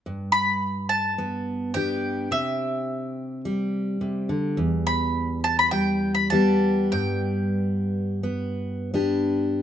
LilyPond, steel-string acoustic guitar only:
\new Staff \with { instrumentName = "Steel-string acoustic guitar" } { \time 4/4 \key g \major \tempo 4 = 106 << { r2 b4 <b d' g'>4 | r2 g2~ | g2 g4 <g b g'>4~ | <g b g'>2 b4 <b d' g'>4 | } \\ { g,1 | c2. c8 d8 | e,1 | g,1 | } >> }